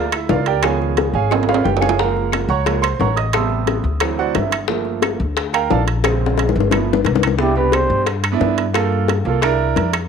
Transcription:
Already playing: upright bass D2, grand piano F4 A#4 D5 F5
0.12 grand piano E4 E5, high bongo, high timbale, claves
0.29 upright bass C#2, grand piano F4 A#4 D5 F5, high bongo, low bongo, low timbale
0.46 grand piano G4 A#4 D5 G5, high bongo, high timbale
0.63 grand piano D#3 F3 B3 G#4 C#5 F5 G#5, high bongo, high timbale, claves
0.82 high bongo
0.97 high bongo, high timbale
1.14 upright bass G#1, grand piano G#4 C#5 F5 G#5
1.31 grand piano D#3 F3 B3, high bongo, high timbale, claves
1.43 high timbale
1.49 grand piano F4 B4 C#5 F5, high bongo
1.54 high timbale
1.64 upright bass F#1, grand piano G4 G5, low bongo
1.77 low timbale
1.81 grand piano G#4 C#5 F5 G#5, low bongo, claves
1.89 low timbale
1.98 grand piano F3 G#3 A#3 A#4 F5 F#5 A#5, high bongo
2.17 high bongo
2.32 high bongo, high timbale, claves
2.49 upright bass C#2, grand piano C#5 F#5 A#5 C#6
2.66 grand piano F3 G#3 A#3, high bongo, high timbale
2.82 grand piano C5 C6, high bongo, high timbale, claves
2.99 upright bass A1, grand piano C#5 F#5 A#5 C#6, high bongo, low bongo
3.16 grand piano D#5 D#6, high bongo, high timbale
3.33 grand piano C3 G3 B3 E5 A5 C6 E6, high bongo, high timbale, claves
3.50 high bongo
3.67 high bongo, high timbale
3.84 upright bass D2
4.00 grand piano E3 F#3 C4, high bongo, high timbale, claves
4.18 grand piano F#4 C5 D5 F#5, high bongo
4.35 upright bass G1, grand piano E4 E5, high bongo, low bongo, high timbale
4.51 high bongo, high timbale, claves
4.68 grand piano F3 A3 A#3, high bongo
4.85 high bongo
5.02 high bongo, high timbale, claves
5.20 upright bass D2
5.37 high bongo, high timbale
5.53 grand piano A#4 F5 G5 A#5, high bongo, high timbale, claves
5.70 upright bass A#1, grand piano A4 D5 F5 A5, high bongo, low bongo, low timbale
5.87 high bongo, high timbale
6.04 grand piano C#3 G#3 C4, high bongo, high timbale, claves
6.26 high bongo
6.38 high bongo, high timbale
6.49 low bongo
6.56 upright bass G1
6.60 low bongo
6.71 grand piano F3 A3 B3, low bongo, high timbale, claves
6.93 low bongo
7.05 upright bass C2, low bongo, high timbale
7.15 low bongo
7.23 high timbale, claves
7.27 low bongo
7.38 grand piano B3 D4 E4, trumpet G4, high bongo
7.54 grand piano B2 D4 G4, trumpet B4, high bongo
7.72 trumpet C5, high bongo, high timbale, claves
7.90 upright bass G2
8.06 high bongo, high timbale
8.23 high bongo, high timbale, claves
8.32 grand piano B3 D4 E4
8.40 upright bass G2, high bongo, low bongo, low timbale
8.58 high bongo, high timbale
8.73 grand piano A#3 F4 A4, high bongo, high timbale, claves
8.92 high bongo
9.08 high bongo, high timbale
9.25 upright bass C2, grand piano A#3 F4 A4
9.41 grand piano D4 E4 A#4, high bongo, high timbale, claves
9.59 high bongo
9.76 upright bass F2, high bongo, low bongo, high timbale
9.93 high bongo, high timbale, claves

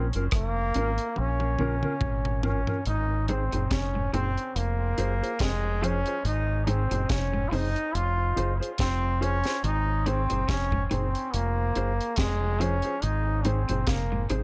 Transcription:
Already playing: fingered electric bass A#1
0.13 fingered electric bass F#1, clean electric guitar C#4 F4 A#4, closed hi-hat
0.31 fingered electric bass F1, trombone A#3, kick, cross-stick, closed hi-hat
0.74 fingered electric bass G#1, clean electric guitar C#4 F4 A#4, closed hi-hat
0.98 closed hi-hat
1.16 fingered electric bass A#1, trombone C#4, high tom
1.40 high tom
1.59 fingered electric bass A#1, clean electric guitar C#4 F4 A#4, mid tom
1.83 clean electric guitar C#4 F4 A#4, mid tom
2.01 fingered electric bass G#1, kick, mid tom
2.25 mid tom
2.43 clean electric guitar C#4 F4 A#4, trombone C#4, floor tom
2.67 clean electric guitar C#4 F4 A#4, floor tom
2.86 fingered electric bass G#1, trombone D#4, closed hi-hat
3.28 clean electric guitar G#2 D#4 G#4 C5, trombone C4, closed hi-hat
3.52 fingered electric bass F#1, clean electric guitar A#2 D#4 G#4 C5, closed hi-hat
3.71 fingered electric bass F1, clean electric guitar C3, trombone C#4, kick, snare, closed hi-hat
3.95 clean electric guitar G#2
4.13 fingered electric bass F#1, clean electric guitar A#2 D#4 G#4 C5, trombone C4, closed hi-hat
4.38 closed hi-hat
4.56 fingered electric bass F1, trombone A#3, closed hi-hat
4.98 fingered electric bass F#1, clean electric guitar F4 G#4 C5, closed hi-hat
5.22 clean electric guitar F4 G#4 C5, closed hi-hat
5.39 fingered electric bass F1, clean electric guitar C3, trombone G#3, kick, snare, closed hi-hat
5.82 clean electric guitar F3 F4 G#4 C5, trombone C#4, closed hi-hat
6.06 clean electric guitar F4 G#4 C5, closed hi-hat
6.25 fingered electric bass G#1, trombone D#4, closed hi-hat
6.67 clean electric guitar G#2 D#4 G#4 C5, trombone C4, closed hi-hat
6.91 fingered electric bass F#1, clean electric guitar A#2 D#4 G#4 C5, closed hi-hat
7.09 fingered electric bass F1, clean electric guitar C3, trombone C#4, kick, snare, closed hi-hat
7.33 clean electric guitar G#2
7.48 fingered electric bass F#1, clean electric guitar C3 D#4, trombone F4
7.53 trombone D#4, clean electric guitar G#4 C5, open hi-hat
7.76 closed hi-hat
7.95 fingered electric bass F1, trombone F4, closed hi-hat
8.36 fingered electric bass F#1, clean electric guitar F4 G#4 C5, closed hi-hat
8.60 clean electric guitar F4 G#4 C5, closed hi-hat
8.78 fingered electric bass F1, trombone C4, kick, snare, closed hi-hat
9.21 trombone C#4, clean electric guitar F4 G#4 C5, closed hi-hat
9.44 clean electric guitar F4 G#4 C5, snare, closed hi-hat
9.64 fingered electric bass G#1, trombone D#4, closed hi-hat
10.06 clean electric guitar G#2 D#4 G#4 C5, trombone C4, closed hi-hat
10.30 fingered electric bass F#1, clean electric guitar A#2 D#4 G#4 C5, closed hi-hat
10.48 fingered electric bass F1, clean electric guitar C3, trombone C#4, kick, snare, closed hi-hat
10.72 clean electric guitar G#2, kick
10.86 trombone C#4
10.91 fingered electric bass F#1, clean electric guitar A#2 D#4 G#4 C5, trombone C4, closed hi-hat
11.15 closed hi-hat
11.34 fingered electric bass F1, trombone A#3, closed hi-hat
11.75 fingered electric bass F#1, clean electric guitar F4 G#4 C5, closed hi-hat
12.01 closed hi-hat
12.16 fingered electric bass F1, clean electric guitar C3, trombone G#3, kick, snare, closed hi-hat
12.60 clean electric guitar F3 F4 G#4 C5, trombone C#4, closed hi-hat
12.82 clean electric guitar F4 G#4 C5, closed hi-hat
13.02 fingered electric bass G#1, trombone D#4, closed hi-hat
13.45 clean electric guitar G#2 D#4 G#4 C5, trombone C4, closed hi-hat
13.69 fingered electric bass F#1, clean electric guitar A#2 D#4 G#4 C5, closed hi-hat
13.87 fingered electric bass F1, clean electric guitar C3, trombone A#3, kick, snare, closed hi-hat
14.12 clean electric guitar G#2
14.30 fingered electric bass G#1, clean electric guitar C3 D#4 G#4 C5, closed hi-hat

